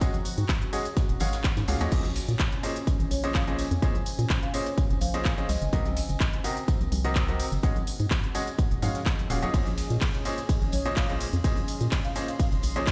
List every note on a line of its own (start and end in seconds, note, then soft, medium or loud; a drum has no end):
0.00 0.12 G#3 loud
0.00 5.49 C#4 medium
0.00 0.12 C#4 medium
0.00 1.92 F#4 loud
0.00 0.12 F#4 medium
0.00 0.12 G#4 medium
0.00 0.12 D#5 loud
0.00 0.78 A#5 medium
0.00 kick loud
0.00 closed hi-hat medium
0.00 tambourine medium
0.00 shaker soft
0.13 closed hi-hat soft
0.13 tambourine soft
0.13 high conga medium
0.13 shaker soft
0.25 open hi-hat loud
0.25 tambourine medium
0.25 shaker medium
0.38 0.45 G#2 medium
0.38 closed hi-hat medium
0.38 tambourine soft
0.38 shaker soft
0.49 kick loud
0.49 snare loud
0.49 clap loud
0.49 closed hi-hat medium
0.49 tambourine medium
0.49 shaker soft
0.62 closed hi-hat soft
0.62 tambourine soft
0.62 shaker soft
0.73 0.84 G#3 medium
0.73 0.84 C#4 medium
0.73 0.84 F#4 medium
0.73 0.84 G#4 medium
0.73 0.84 D#5 medium
0.73 open hi-hat loud
0.73 tambourine loud
0.73 tambourine medium
0.73 shaker medium
0.85 6.35 G#5 medium
0.85 closed hi-hat medium
0.85 closed hi-hat soft
0.85 tambourine soft
0.85 shaker soft
0.97 kick loud
0.97 snare loud
0.97 closed hi-hat medium
0.97 tambourine medium
0.97 shaker soft
1.09 1.16 D#1 medium
1.09 closed hi-hat soft
1.09 tambourine soft
1.09 shaker soft
1.20 1.56 G#1 medium
1.20 1.37 G#3 medium
1.20 1.37 C#4 medium
1.20 1.37 F#4 medium
1.20 1.37 G#4 medium
1.20 1.37 F5 medium
1.20 snare loud
1.20 open hi-hat loud
1.20 tambourine medium
1.20 high conga medium
1.20 shaker medium
1.33 snare loud
1.33 closed hi-hat medium
1.33 tambourine medium
1.33 tambourine soft
1.33 shaker soft
1.43 kick loud
1.43 snare loud
1.43 clap loud
1.43 closed hi-hat medium
1.43 tambourine medium
1.43 shaker soft
1.56 1.64 G#2 loud
1.56 snare loud
1.56 closed hi-hat soft
1.56 tambourine medium
1.56 tambourine soft
1.56 high conga medium
1.56 shaker soft
1.68 1.76 C#2 medium
1.68 1.79 A#2 medium
1.68 1.79 C#4 medium
1.68 1.79 F#4 medium
1.68 1.79 G#4 medium
1.68 1.79 F5 medium
1.68 snare loud
1.68 open hi-hat loud
1.68 tambourine medium
1.68 shaker medium
1.80 1.88 D#2 medium
1.80 1.90 A#2 loud
1.80 1.90 C#4 medium
1.80 1.90 F#4 medium
1.80 1.90 G#4 medium
1.80 1.90 D#5 loud
1.80 snare loud
1.80 closed hi-hat medium
1.80 tambourine medium
1.80 tambourine soft
1.80 high conga medium
1.80 shaker soft
1.91 2.20 A#1 loud
1.91 2.03 A#2 loud
1.91 2.03 C#4 medium
1.91 2.03 G#4 medium
1.91 2.03 C5 medium
1.91 2.03 D#5 loud
1.91 kick loud
1.91 closed hi-hat medium
1.91 crash medium
1.91 tambourine medium
1.91 shaker soft
2.00 6.35 C5 medium
2.00 high conga medium
2.05 snare medium
2.05 closed hi-hat soft
2.05 tambourine soft
2.05 shaker soft
2.16 snare soft
2.16 open hi-hat loud
2.16 open hi-hat medium
2.16 tambourine loud
2.16 shaker medium
2.28 2.35 A#2 medium
2.28 closed hi-hat medium
2.28 tambourine soft
2.28 shaker soft
2.39 kick loud
2.39 snare loud
2.39 clap loud
2.39 closed hi-hat medium
2.39 tambourine medium
2.39 shaker soft
2.52 closed hi-hat soft
2.52 tambourine soft
2.52 shaker soft
2.63 2.74 A#2 medium
2.63 2.74 C#4 medium
2.63 2.74 G#4 medium
2.63 2.74 C5 medium
2.63 2.74 D#5 medium
2.63 open hi-hat loud
2.63 tambourine medium
2.63 shaker medium
2.76 closed hi-hat medium
2.76 tambourine soft
2.76 shaker soft
2.87 kick loud
2.87 closed hi-hat medium
2.87 tambourine soft
2.87 tambourine medium
2.87 shaker soft
3.00 3.07 G#1 loud
3.00 closed hi-hat soft
3.00 tambourine soft
3.00 shaker soft
3.11 3.63 A#1 medium
3.11 3.25 C#5 medium
3.11 open hi-hat loud
3.11 tambourine medium
3.11 tambourine loud
3.11 high conga medium
3.11 shaker medium
3.23 3.40 A#2 loud
3.23 3.40 C#4 medium
3.23 3.40 G#4 medium
3.23 3.40 C5 medium
3.23 3.40 D#5 loud
3.23 snare medium
3.23 closed hi-hat medium
3.23 tambourine soft
3.23 shaker soft
3.34 3.49 F5 medium
3.34 kick loud
3.34 snare loud
3.34 clap loud
3.34 closed hi-hat medium
3.34 tambourine medium
3.34 shaker soft
3.47 3.63 A#2 medium
3.47 3.63 C#4 medium
3.47 3.64 G#4 medium
3.47 3.63 C5 medium
3.47 3.64 D#5 loud
3.47 closed hi-hat soft
3.47 tambourine soft
3.47 high conga medium
3.47 shaker soft
3.59 open hi-hat loud
3.59 tambourine medium
3.59 shaker medium
3.71 3.78 F2 loud
3.71 closed hi-hat medium
3.71 tambourine soft
3.71 shaker soft
3.82 3.93 A#2 loud
3.82 3.93 C#4 medium
3.82 3.93 G#4 medium
3.82 3.93 C5 medium
3.82 3.93 D#5 loud
3.82 kick loud
3.82 closed hi-hat medium
3.82 tambourine medium
3.82 shaker soft
3.95 closed hi-hat soft
3.95 tambourine soft
3.95 high conga medium
3.95 shaker soft
4.06 open hi-hat loud
4.06 tambourine medium
4.06 shaker medium
4.19 4.26 A#2 medium
4.19 closed hi-hat medium
4.19 tambourine soft
4.19 shaker soft
4.30 kick loud
4.30 snare loud
4.30 clap loud
4.30 closed hi-hat medium
4.30 tambourine medium
4.30 shaker soft
4.43 4.52 F5 medium
4.43 closed hi-hat soft
4.43 tambourine soft
4.43 shaker soft
4.54 4.65 A#2 medium
4.54 4.65 C#4 medium
4.54 4.65 G#4 medium
4.54 4.65 C5 medium
4.54 4.68 C#5 medium
4.54 4.65 D#5 medium
4.54 open hi-hat loud
4.54 tambourine loud
4.54 tambourine medium
4.54 shaker medium
4.66 closed hi-hat medium
4.66 closed hi-hat soft
4.66 tambourine soft
4.66 shaker soft
4.78 kick loud
4.78 closed hi-hat medium
4.78 tambourine medium
4.78 shaker soft
4.90 4.97 F1 medium
4.90 closed hi-hat soft
4.90 tambourine soft
4.90 shaker soft
5.01 5.27 A#1 medium
5.01 5.47 F5 loud
5.01 open hi-hat loud
5.01 tambourine loud
5.01 tambourine medium
5.01 high conga loud
5.01 shaker medium
5.14 5.30 A#2 medium
5.14 5.30 C#4 medium
5.14 5.30 G#4 medium
5.14 5.30 C5 medium
5.14 5.30 D#5 loud
5.14 snare medium
5.14 closed hi-hat medium
5.14 tambourine soft
5.14 shaker soft
5.25 5.33 G#1 medium
5.25 kick loud
5.25 snare loud
5.25 clap loud
5.25 closed hi-hat medium
5.25 tambourine medium
5.25 shaker soft
5.38 5.48 C#4 medium
5.38 5.48 G#4 medium
5.38 5.48 C5 medium
5.38 5.48 D#5 loud
5.38 closed hi-hat soft
5.38 tambourine soft
5.38 high conga medium
5.38 shaker soft
5.49 5.57 C2 medium
5.49 7.63 C4 medium
5.49 5.97 D#5 medium
5.49 snare soft
5.49 open hi-hat loud
5.49 tambourine medium
5.49 tambourine loud
5.49 shaker medium
5.62 5.69 F#1 loud
5.62 closed hi-hat medium
5.62 tambourine soft
5.62 shaker soft
5.72 6.01 C2 loud
5.72 5.84 C3 loud
5.72 5.84 C4 medium
5.72 5.84 F#4 medium
5.72 5.84 A#4 medium
5.72 8.40 A#4 medium
5.72 5.84 D#5 loud
5.72 kick loud
5.72 closed hi-hat medium
5.72 tambourine medium
5.72 shaker soft
5.85 snare medium
5.85 closed hi-hat soft
5.85 tambourine soft
5.85 high conga medium
5.85 shaker soft
5.96 snare soft
5.96 open hi-hat loud
5.96 open hi-hat medium
5.96 tambourine medium
5.96 shaker medium
6.09 6.16 F#1 medium
6.09 closed hi-hat medium
6.09 tambourine soft
6.09 shaker soft
6.20 kick loud
6.20 snare loud
6.20 clap loud
6.20 closed hi-hat soft
6.20 tambourine medium
6.20 shaker soft
6.33 closed hi-hat soft
6.33 tambourine soft
6.33 shaker soft
6.44 6.55 C3 medium
6.44 6.55 C4 medium
6.44 6.55 F#4 medium
6.44 6.55 A#4 medium
6.44 6.55 D#5 medium
6.44 12.92 D#5 loud
6.44 9.54 F#5 loud
6.44 open hi-hat loud
6.44 tambourine medium
6.44 tambourine loud
6.44 shaker medium
6.57 closed hi-hat medium
6.57 tambourine soft
6.57 shaker soft
6.68 kick loud
6.68 closed hi-hat medium
6.68 tambourine medium
6.68 shaker soft
6.81 6.88 A#1 loud
6.81 closed hi-hat soft
6.81 tambourine soft
6.81 shaker soft
6.92 7.44 C2 medium
6.92 open hi-hat loud
6.92 tambourine medium
6.92 tambourine loud
6.92 high conga medium
6.92 shaker medium
7.04 7.21 C3 loud
7.04 7.21 C4 medium
7.04 7.21 F#4 medium
7.04 7.21 A#4 medium
7.04 7.21 D#5 loud
7.04 snare medium
7.04 closed hi-hat medium
7.04 tambourine soft
7.04 shaker soft
7.15 kick loud
7.15 snare loud
7.15 clap loud
7.15 closed hi-hat medium
7.15 tambourine medium
7.15 shaker soft
7.28 7.44 C3 medium
7.28 7.44 C4 medium
7.28 7.44 F#4 medium
7.28 7.44 A#4 medium
7.28 7.44 D#5 loud
7.28 closed hi-hat soft
7.28 tambourine soft
7.28 high conga medium
7.28 shaker soft
7.40 open hi-hat loud
7.40 tambourine medium
7.40 tambourine loud
7.40 shaker medium
7.52 7.59 F#1 loud
7.52 closed hi-hat medium
7.52 tambourine soft
7.52 shaker soft
7.63 7.74 G#3 loud
7.63 12.92 C#4 medium
7.63 7.74 C#4 medium
7.63 7.74 F#4 medium
7.63 7.74 G#4 medium
7.63 7.74 D#5 loud
7.63 kick loud
7.63 closed hi-hat soft
7.63 tambourine medium
7.63 shaker soft
7.71 12.92 G#4 medium
7.76 closed hi-hat soft
7.76 tambourine soft
7.76 high conga medium
7.76 shaker soft
7.87 open hi-hat loud
7.87 tambourine medium
7.87 shaker medium
8.00 8.07 G#2 medium
8.00 closed hi-hat medium
8.00 tambourine soft
8.00 shaker soft
8.11 kick loud
8.11 snare loud
8.11 clap loud
8.11 closed hi-hat soft
8.11 tambourine medium
8.11 shaker soft
8.23 closed hi-hat soft
8.23 tambourine soft
8.23 shaker soft
8.35 8.46 G#3 medium
8.35 8.46 C#4 medium
8.35 8.46 F#4 medium
8.35 8.46 G#4 medium
8.35 8.46 D#5 medium
8.35 open hi-hat loud
8.35 tambourine loud
8.35 tambourine medium
8.35 shaker medium
8.47 closed hi-hat medium
8.47 closed hi-hat soft
8.47 tambourine soft
8.47 shaker soft
8.59 kick loud
8.59 closed hi-hat soft
8.59 tambourine medium
8.59 shaker soft
8.71 8.78 D#1 medium
8.71 closed hi-hat soft
8.71 tambourine soft
8.71 shaker soft
8.82 8.90 G#2 medium
8.82 8.99 G#3 medium
8.82 8.99 C#4 medium
8.82 8.99 F#4 medium
8.82 8.99 G#4 medium
8.82 8.99 F5 medium
8.82 open hi-hat loud
8.82 tambourine medium
8.82 tambourine loud
8.82 high conga medium
8.82 shaker medium
8.95 snare medium
8.95 closed hi-hat medium
8.95 tambourine soft
8.95 shaker soft
9.06 kick loud
9.06 snare loud
9.06 clap loud
9.06 closed hi-hat medium
9.06 tambourine medium
9.06 shaker soft
9.19 closed hi-hat soft
9.19 tambourine soft
9.19 high conga medium
9.19 shaker soft
9.30 9.45 D#1 loud
9.30 9.41 A#2 medium
9.30 9.41 C#4 medium
9.30 9.41 F#4 medium
9.30 9.41 G#4 medium
9.30 9.41 F5 medium
9.30 snare soft
9.30 open hi-hat loud
9.30 tambourine medium
9.30 tambourine loud
9.30 shaker medium
9.42 9.52 A#2 loud
9.42 9.52 C#4 medium
9.42 9.52 F#4 medium
9.42 9.52 G#4 medium
9.42 9.52 D#5 loud
9.42 closed hi-hat medium
9.42 tambourine soft
9.42 high conga medium
9.42 shaker soft
9.53 9.82 A#1 loud
9.53 9.65 A#2 loud
9.53 9.65 C#4 medium
9.53 9.65 G#4 medium
9.53 9.65 C5 medium
9.53 9.65 D#5 loud
9.53 kick loud
9.53 closed hi-hat soft
9.53 ride medium
9.53 tambourine medium
9.53 shaker soft
9.66 snare medium
9.66 closed hi-hat soft
9.66 tambourine soft
9.66 high conga medium
9.66 shaker soft
9.77 snare soft
9.77 open hi-hat medium
9.77 open hi-hat loud
9.77 tambourine medium
9.77 shaker medium
9.90 9.97 A#2 medium
9.90 closed hi-hat medium
9.90 tambourine soft
9.90 shaker soft
10.01 kick loud
10.01 snare loud
10.01 clap loud
10.01 closed hi-hat soft
10.01 ride medium
10.01 tambourine soft
10.01 tambourine medium
10.01 shaker soft
10.14 closed hi-hat soft
10.14 tambourine soft
10.14 shaker soft
10.25 10.36 A#2 medium
10.25 10.36 C#4 medium
10.25 10.36 G#4 medium
10.25 10.36 C5 medium
10.25 10.36 D#5 medium
10.25 open hi-hat loud
10.25 tambourine medium
10.25 shaker medium
10.38 12.92 C6 medium
10.38 closed hi-hat medium
10.38 tambourine soft
10.38 shaker soft
10.49 kick loud
10.49 closed hi-hat soft
10.49 ride medium
10.49 tambourine medium
10.49 shaker soft
10.62 10.69 G#1 loud
10.62 closed hi-hat soft
10.62 tambourine soft
10.62 shaker soft
10.72 11.25 A#1 medium
10.72 10.87 C#5 medium
10.72 open hi-hat loud
10.72 tambourine loud
10.72 tambourine medium
10.72 high conga medium
10.72 shaker medium
10.85 11.02 A#2 loud
10.85 11.02 C#4 medium
10.85 11.02 G#4 medium
10.85 11.02 C5 medium
10.85 11.02 D#5 loud
10.85 snare medium
10.85 closed hi-hat medium
10.85 tambourine soft
10.85 shaker soft
10.96 11.11 F5 medium
10.96 kick loud
10.96 snare loud
10.96 clap loud
10.96 closed hi-hat medium
10.96 ride medium
10.96 tambourine medium
10.96 shaker soft
11.09 11.25 A#2 medium
11.09 11.25 C#4 medium
11.09 11.25 G#4 medium
11.09 11.25 C5 medium
11.09 11.25 D#5 loud
11.09 closed hi-hat soft
11.09 tambourine soft
11.09 high conga medium
11.09 shaker soft
11.20 open hi-hat loud
11.20 tambourine medium
11.20 tambourine loud
11.20 shaker medium
11.33 11.40 F2 loud
11.33 closed hi-hat soft
11.33 tambourine soft
11.33 shaker soft
11.44 11.55 A#2 loud
11.44 11.55 C#4 medium
11.44 11.55 G#4 medium
11.44 11.55 C5 medium
11.44 11.55 D#5 loud
11.44 kick loud
11.44 closed hi-hat medium
11.44 ride medium
11.44 tambourine medium
11.44 tambourine soft
11.44 shaker soft
11.57 closed hi-hat soft
11.57 tambourine soft
11.57 high conga medium
11.57 shaker soft
11.68 open hi-hat loud
11.68 tambourine medium
11.68 shaker medium
11.81 11.88 A#2 medium
11.81 closed hi-hat medium
11.81 tambourine soft
11.81 shaker soft
11.92 kick loud
11.92 snare loud
11.92 clap loud
11.92 closed hi-hat medium
11.92 ride medium
11.92 tambourine medium
11.92 shaker soft
12.04 12.13 F5 medium
12.04 closed hi-hat soft
12.04 tambourine soft
12.04 shaker soft
12.15 12.27 A#2 medium
12.15 12.27 C#4 medium
12.15 12.27 G#4 medium
12.15 12.27 C5 medium
12.15 12.27 D#5 medium
12.15 open hi-hat loud
12.15 tambourine medium
12.15 shaker medium
12.28 12.41 F5 loud
12.28 closed hi-hat medium
12.28 closed hi-hat soft
12.28 tambourine soft
12.28 shaker soft
12.40 kick loud
12.40 closed hi-hat medium
12.40 ride medium
12.40 tambourine medium
12.40 tambourine soft
12.40 shaker soft
12.52 12.59 F1 medium
12.52 closed hi-hat soft
12.52 tambourine soft
12.52 shaker soft
12.63 12.89 A#1 medium
12.63 open hi-hat loud
12.63 tambourine medium
12.63 high conga medium
12.63 shaker medium
12.76 12.92 A#2 loud
12.76 12.92 C#4 medium
12.76 12.92 G#4 medium
12.76 12.92 C5 medium
12.76 12.92 C#5 medium
12.76 12.92 D#5 loud
12.76 snare medium
12.76 closed hi-hat medium
12.76 tambourine soft
12.76 shaker soft
12.87 12.92 G#1 medium
12.87 kick loud
12.87 snare loud
12.87 clap loud
12.87 closed hi-hat medium
12.87 ride medium
12.87 tambourine medium
12.87 shaker soft